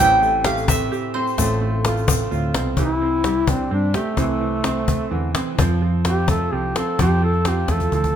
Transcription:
0.00 0.88 A1 medium
0.00 1.38 A2 medium
0.00 1.39 E3 medium
0.00 1.40 C4 medium
0.00 1.15 G4 medium
0.00 1.41 C5 medium
0.00 0.42 G5 loud
0.22 1.37 A3 medium
0.22 shaker soft
0.44 1.36 A3 medium
0.44 0.90 G4 medium
0.44 0.67 F5 loud
0.44 cajon slap loud
0.58 shaker soft
0.68 1.13 C4 medium
0.68 1.14 E5 medium
0.68 cajon bass medium
0.68 shaker loud
0.92 1.43 G4 medium
0.92 shaker soft
1.14 1.43 C4 medium
1.14 1.36 G4 medium
1.14 2.50 C5 medium
1.27 shaker soft
1.38 2.27 A1 medium
1.38 2.30 A2 medium
1.38 1.60 A3 medium
1.38 4.19 C4 medium
1.38 2.77 F4 medium
1.38 2.80 A4 medium
1.38 cajon bass medium
1.38 cajon slap soft
1.38 shaker medium
1.61 2.83 A3 medium
1.85 2.76 A3 medium
1.85 2.30 F4 medium
1.85 cajon slap loud
1.85 shaker soft
1.97 cajon slap soft
1.97 shaker soft
2.08 2.54 C4 medium
2.08 cajon bass loud
2.08 shaker loud
2.20 cajon slap soft
2.31 2.53 D2 medium
2.31 2.54 A2 medium
2.31 2.83 F4 medium
2.31 shaker soft
2.43 cajon slap soft
2.54 2.76 C2 medium
2.54 2.77 B2 medium
2.54 2.83 C4 medium
2.54 cajon slap medium
2.77 3.68 C2 medium
2.77 4.15 C3 medium
2.77 4.16 E3 medium
2.77 3.51 E4 medium
2.77 3.23 G4 medium
2.77 cajon bass medium
3.01 3.70 C4 medium
3.24 4.18 G3 medium
3.24 3.93 G4 medium
3.24 cajon slap medium
3.47 3.72 C4 medium
3.47 4.18 D4 medium
3.47 cajon bass medium
3.71 3.94 G2 medium
3.71 4.16 C4 medium
3.71 3.97 D4 medium
3.94 4.18 A3 medium
3.94 4.15 G4 medium
3.94 4.23 G4 medium
3.94 cajon slap medium
4.17 5.08 C2 medium
4.17 5.55 C3 medium
4.17 4.40 E3 medium
4.17 5.10 A3 medium
4.17 4.62 C4 medium
4.17 cajon bass medium
4.41 5.09 E3 medium
4.64 5.33 C4 medium
4.64 8.16 C5 medium
4.64 cajon slap medium
4.88 5.63 A3 medium
4.88 cajon bass medium
5.11 5.34 E2 medium
5.11 5.34 D3 medium
5.11 5.58 E3 medium
5.35 5.58 E3 medium
5.35 5.58 C4 medium
5.35 cajon slap medium
5.58 6.48 F2 medium
5.58 6.96 F3 medium
5.58 5.80 F3 medium
5.58 6.04 C4 medium
5.58 cajon bass loud
5.82 6.51 F3 medium
6.05 6.74 C4 medium
6.05 6.76 F4 medium
6.05 6.29 G4 medium
6.05 cajon slap medium
6.28 7.68 A3 medium
6.28 6.55 A4 medium
6.28 cajon bass medium
6.52 6.75 C2 medium
6.52 6.98 F3 medium
6.52 6.78 G4 medium
6.76 6.99 C4 medium
6.76 6.97 F4 medium
6.76 6.99 A4 medium
6.76 cajon slap medium
6.99 7.66 F2 medium
6.99 7.21 F3 medium
6.99 7.92 F3 medium
6.99 7.44 C4 medium
6.99 7.23 G4 medium
6.99 cajon bass medium
7.23 7.91 F3 medium
7.23 7.50 A4 medium
7.33 cajon slap soft
7.45 8.14 C4 medium
7.45 8.16 F4 medium
7.45 7.74 G4 medium
7.45 cajon slap medium
7.68 7.90 E2 medium
7.68 8.16 A3 medium
7.68 7.93 A4 medium
7.68 cajon bass medium
7.68 cajon slap soft
7.80 cajon bass soft
7.92 8.14 D2 medium
7.92 8.15 E3 medium
7.92 8.16 F3 medium
7.92 8.16 A4 medium
7.92 cajon bass medium
8.04 cajon bass medium

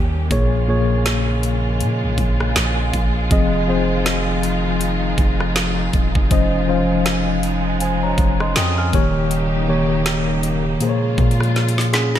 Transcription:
0.00 0.30 D#2 loud
0.00 0.27 D#3 medium
0.00 0.27 G3 medium
0.00 3.27 A#3 medium
0.00 0.27 C#4 medium
0.00 0.27 G4 medium
0.30 1.83 A#1 loud
0.30 0.59 A#2 medium
0.30 3.28 C#3 medium
0.30 8.89 F3 medium
0.30 6.27 G#3 medium
0.30 0.59 A#3 medium
0.30 8.89 F4 medium
0.30 0.59 G#4 medium
0.30 0.60 C#5 loud
0.30 kick loud
0.30 closed hi-hat medium
0.68 1.74 A#2 medium
0.68 1.75 A#3 medium
0.68 1.75 G#4 medium
0.68 1.75 C#5 loud
1.06 snare loud
1.06 closed hi-hat medium
1.43 closed hi-hat medium
1.81 2.05 A#2 loud
1.81 closed hi-hat medium
2.03 2.18 A#1 loud
2.18 2.54 A#1 loud
2.18 kick medium
2.18 closed hi-hat medium
2.41 cross-stick medium
2.56 2.92 A#1 loud
2.56 snare loud
2.56 closed hi-hat medium
2.93 3.30 A#1 loud
2.93 kick medium
2.93 closed hi-hat medium
3.30 5.15 F1 loud
3.30 6.28 D#3 medium
3.30 3.59 F3 medium
3.30 3.59 C4 medium
3.30 8.89 D#4 medium
3.30 3.59 G#4 medium
3.30 3.60 D#5 loud
3.30 kick loud
3.30 closed hi-hat medium
3.68 4.74 F3 medium
3.68 4.75 C4 medium
3.68 4.75 G#4 medium
3.68 4.75 C5 loud
4.06 snare loud
4.06 closed hi-hat medium
4.43 closed hi-hat medium
4.81 closed hi-hat medium
5.18 5.90 F1 loud
5.18 kick medium
5.18 closed hi-hat medium
5.40 cross-stick medium
5.56 snare loud
5.56 closed hi-hat medium
5.93 6.15 D#1 loud
5.93 kick medium
5.93 closed hi-hat medium
6.15 6.30 F1 loud
6.15 kick loud
6.30 8.15 F1 loud
6.30 8.91 C#3 medium
6.30 6.59 F3 medium
6.30 8.91 G#3 medium
6.30 6.59 C#4 medium
6.30 6.59 C5 medium
6.30 6.60 D#5 loud
6.30 kick loud
6.30 closed hi-hat medium
6.68 7.74 F3 medium
6.68 7.75 C#4 medium
6.68 7.75 C5 medium
6.68 7.75 F5 medium
7.06 snare loud
7.06 closed hi-hat medium
7.43 closed hi-hat medium
7.80 8.02 C5 medium
7.80 8.02 G#5 medium
7.80 closed hi-hat medium
8.03 8.39 C#5 medium
8.03 8.39 A#5 medium
8.18 8.54 F1 loud
8.18 kick medium
8.18 closed hi-hat medium
8.40 8.56 D#5 medium
8.40 8.55 C6 medium
8.40 cross-stick medium
8.56 8.92 F2 loud
8.56 8.77 G5 medium
8.56 8.77 D#6 medium
8.56 snare loud
8.56 closed hi-hat medium
8.78 9.14 G#5 medium
8.78 9.14 F6 medium
8.93 10.77 D#1 loud
8.93 12.19 C#3 medium
8.93 9.56 D#3 medium
8.93 10.79 G3 medium
8.93 9.56 A#3 medium
8.93 12.19 A#3 medium
8.93 10.79 D#4 medium
8.93 10.79 G4 medium
8.93 9.56 G4 medium
8.93 9.57 C#5 loud
8.93 kick loud
8.93 closed hi-hat medium
9.31 closed hi-hat medium
9.68 10.75 D#3 medium
9.68 10.75 A#3 medium
9.68 10.75 G4 medium
9.68 10.75 C#5 loud
10.06 snare loud
10.06 closed hi-hat medium
10.43 closed hi-hat medium
10.81 12.02 A#2 medium
10.81 12.19 F3 medium
10.81 12.19 G#3 medium
10.81 12.02 A#3 medium
10.81 12.19 F4 loud
10.81 11.92 G#4 medium
10.81 10.89 C5 medium
10.81 closed hi-hat medium
10.89 12.06 C#5 loud
11.18 12.19 A#2 loud
11.18 kick loud
11.18 closed hi-hat soft
11.31 closed hi-hat soft
11.41 cross-stick medium
11.41 closed hi-hat soft
11.56 snare medium
11.56 closed hi-hat medium
11.69 closed hi-hat medium
11.78 snare medium
11.78 closed hi-hat medium
11.93 12.19 C#4 medium
11.93 12.19 G#4 medium
11.93 snare medium
11.93 closed hi-hat medium
12.16 snare medium

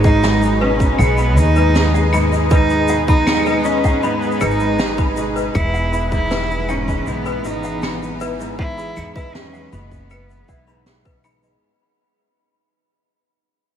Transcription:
0.00 0.91 G#1 loud
0.00 0.22 G#2 loud
0.00 5.55 G#3 medium
0.00 0.48 A#3 medium
0.00 1.07 F#4 medium
0.00 1.03 G#4 medium
0.00 11.63 G#4 medium
0.00 11.62 B4 medium
0.00 1.90 C#5 medium
0.00 shaker soft
0.04 2.31 G#3 medium
0.04 0.63 D#4 loud
0.04 0.15 F#5 medium
0.04 kick loud
0.23 0.66 G#2 medium
0.23 0.34 B5 medium
0.23 snare loud
0.23 shaker medium
0.42 2.29 B3 medium
0.42 shaker soft
0.61 1.61 B2 medium
0.61 1.01 C#4 medium
0.61 0.79 B4 loud
0.80 kick medium
0.80 shaker soft
0.99 1.37 B1 medium
0.99 1.39 B3 loud
0.99 1.10 F#5 medium
0.99 claves medium
0.99 shaker medium
1.04 6.71 D#5 medium
1.04 claves medium
1.11 claves soft
1.17 1.29 B5 medium
1.17 claves soft
1.17 shaker soft
1.24 claves soft
1.30 claves soft
1.37 4.33 D#2 medium
1.37 2.99 D#4 medium
1.37 2.13 D#4 loud
1.37 shaker loud
1.56 1.74 G#2 medium
1.56 1.74 B4 medium
1.56 shaker soft
1.75 2.12 G#2 medium
1.75 snare medium
1.75 shaker medium
1.94 3.31 G#4 medium
1.94 2.05 F#5 medium
1.94 shaker soft
2.13 2.50 G#2 loud
2.13 2.24 B5 medium
2.13 claves medium
2.13 shaker medium
2.32 4.59 G#3 medium
2.32 shaker medium
2.51 2.94 G#2 medium
2.51 3.04 D#4 loud
2.51 2.69 B4 loud
2.51 kick loud
2.51 shaker medium
2.70 4.57 B3 medium
2.70 shaker soft
2.88 3.89 B2 medium
2.88 3.00 F#5 medium
2.88 shaker medium
3.08 3.66 D#4 loud
3.08 3.19 B5 medium
3.08 kick loud
3.08 shaker soft
3.27 snare loud
3.27 claves medium
3.27 shaker medium
3.40 claves medium
3.46 3.64 B4 medium
3.46 shaker soft
3.52 claves medium
3.64 4.04 C#4 loud
3.64 5.27 D#4 medium
3.64 shaker medium
3.84 4.02 G#2 medium
3.84 3.95 F#5 medium
3.84 kick medium
3.84 shaker medium
4.03 4.40 G#2 medium
4.03 4.42 B3 medium
4.03 4.14 B5 medium
4.03 shaker medium
4.22 5.59 G#4 medium
4.22 shaker soft
4.32 shaker soft
4.41 5.47 G#1 medium
4.41 4.78 G#2 loud
4.41 5.17 D#4 loud
4.41 4.59 B4 loud
4.41 claves medium
4.41 shaker loud
4.51 shaker soft
4.60 5.60 G#3 medium
4.60 shaker soft
4.79 5.22 G#2 medium
4.79 4.90 F#5 medium
4.79 snare loud
4.79 shaker medium
4.98 6.85 B3 medium
4.98 5.09 B5 medium
4.98 kick loud
4.98 shaker soft
5.17 5.60 B2 medium
5.17 shaker medium
5.36 5.54 B4 medium
5.36 shaker soft
5.55 6.99 E1 loud
5.55 11.63 E3 medium
5.55 6.08 E4 loud
5.55 kick loud
5.55 claves medium
5.55 shaker medium
5.62 11.63 B3 medium
5.74 5.85 F#5 medium
5.74 shaker soft
5.93 7.50 E4 medium
5.93 6.04 B5 medium
5.93 shaker medium
6.12 6.30 G#2 medium
6.12 6.71 E4 loud
6.12 kick medium
6.12 shaker medium
6.31 6.68 G#2 medium
6.31 6.49 B4 loud
6.31 snare loud
6.31 shaker medium
6.50 7.87 G#4 medium
6.50 shaker soft
6.69 7.06 G#2 loud
6.69 7.09 C#4 loud
6.69 6.80 F#5 medium
6.69 claves medium
6.69 shaker medium
6.88 9.15 G#3 medium
6.88 6.99 B5 medium
6.88 kick medium
6.88 shaker medium
7.06 7.45 B1 medium
7.06 7.50 G#2 medium
7.06 7.47 B3 loud
7.06 shaker medium
7.25 9.12 B3 medium
7.25 7.44 B4 loud
7.25 shaker soft
7.45 8.88 G#1 medium
7.45 8.45 B2 medium
7.45 8.21 D#4 loud
7.45 shaker medium
7.63 7.75 F#5 medium
7.63 shaker soft
7.82 7.94 B5 medium
7.82 snare loud
7.82 claves medium
7.82 shaker medium
8.03 shaker soft
8.21 9.77 E4 medium
8.21 8.39 B4 loud
8.21 shaker medium
8.40 8.57 G#2 medium
8.40 shaker medium
8.59 8.96 G#2 medium
8.59 9.12 E4 loud
8.59 8.70 F#5 medium
8.59 kick loud
8.78 10.14 G#4 medium
8.78 8.89 B5 medium
8.78 shaker medium
8.97 9.64 E2 medium
8.97 9.33 G#2 loud
8.97 claves medium
8.97 shaker medium
9.15 11.42 G#3 medium
9.15 9.36 E4 loud
9.15 9.34 B4 loud
9.15 kick loud
9.15 shaker soft
9.35 9.78 G#2 medium
9.35 9.74 C#4 loud
9.35 snare loud
9.53 10.86 B3 medium
9.53 9.64 F#5 medium
9.53 shaker soft
9.72 10.40 F#1 loud
9.72 10.73 B2 medium
9.72 11.25 B3 medium
9.72 9.84 B5 medium
9.72 shaker medium
9.92 kick medium
9.92 shaker medium
10.10 10.29 B4 loud
10.10 claves medium
10.10 shaker medium
10.30 shaker soft
10.48 11.54 B1 medium
10.48 12.05 E4 medium
10.48 10.67 F#5 medium
10.48 kick medium
10.48 shaker medium
10.67 11.11 G#2 medium
10.67 10.86 B5 medium
10.67 shaker soft
10.86 12.72 B3 medium
10.86 snare medium
10.86 shaker medium
11.05 11.30 B2 medium
11.05 11.23 B4 loud
11.05 kick loud
11.05 shaker soft
11.24 11.68 G#2 loud
11.24 11.43 B5 loud
11.24 claves medium
11.24 shaker loud
11.43 11.68 G#3 medium
11.43 11.55 B5 medium
11.43 shaker soft

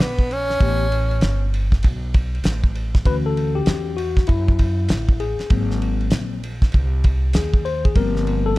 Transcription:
0.00 0.57 A#1 medium
0.00 0.34 B3 medium
0.00 snare loud
0.19 kick medium
0.31 1.54 C#4 loud
0.31 ride medium
0.50 snare soft
0.60 1.19 A1 loud
0.60 0.84 E3 medium
0.60 0.84 A3 medium
0.60 0.85 B3 medium
0.60 0.85 C#4 medium
0.60 0.86 G4 medium
0.60 kick loud
0.60 ride medium
0.92 ride medium
1.11 ride soft
1.21 1.80 G1 medium
1.21 snare loud
1.21 hi-hat pedal soft
1.21 ride medium
1.54 ride medium
1.72 kick medium
1.72 snare soft
1.83 2.42 B1 loud
1.83 kick medium
1.83 ride medium
2.14 kick medium
2.14 ride medium
2.35 ride soft
2.44 3.02 A1 medium
2.44 snare medium
2.44 hi-hat pedal medium
2.44 ride medium
2.64 kick medium
2.75 ride soft
2.95 kick medium
2.95 snare soft
3.05 3.64 D2 loud
3.05 3.94 E3 medium
3.05 3.94 C#4 medium
3.05 3.94 F#4 medium
3.05 3.15 B4 loud
3.05 kick loud
3.05 ride medium
3.26 3.57 A4 medium
3.37 ride soft
3.55 3.94 G4 medium
3.66 4.25 E2 medium
3.66 snare loud
3.66 hi-hat pedal soft
3.66 ride medium
3.97 4.26 F#4 medium
3.97 ride medium
4.17 kick medium
4.17 snare soft
4.27 4.87 F#2 loud
4.27 5.22 E4 medium
4.27 kick medium
4.27 ride medium
4.48 kick medium
4.59 kick medium
4.59 ride medium
4.89 5.37 A1 medium
4.89 snare loud
4.89 hi-hat pedal medium
4.89 ride medium
5.09 kick medium
5.20 5.77 G#4 medium
5.20 ride medium
5.39 muted upright bass stroke soft
5.39 snare soft
5.39 ride soft
5.50 6.09 G#1 loud
5.50 6.39 F#3 medium
5.50 6.39 A#3 soft
5.50 6.39 C4 medium
5.50 kick loud
5.50 ride medium
5.71 snare soft
5.82 ride medium
6.01 ride soft
6.10 6.70 A#1 medium
6.10 snare loud
6.10 hi-hat pedal soft
6.10 ride medium
6.44 ride medium
6.62 kick medium
6.62 snare soft
6.62 ride soft
6.72 7.32 C2 medium
6.72 kick medium
6.72 ride medium
7.04 kick medium
7.04 ride medium
7.33 7.92 D#2 medium
7.33 7.66 G#4 medium
7.33 snare loud
7.33 hi-hat pedal soft
7.33 ride medium
7.54 kick medium
7.65 7.85 C5 medium
7.65 ride soft
7.85 7.96 G#4 medium
7.85 kick medium
7.85 ride soft
7.95 8.54 G1 loud
7.95 8.59 F3 medium
7.95 8.59 G3 soft
7.95 8.59 A#3 soft
7.95 8.59 C4 medium
7.95 8.48 A#4 medium
7.95 kick loud
7.95 ride medium
8.16 snare soft
8.27 ride medium
8.46 8.59 A4 medium

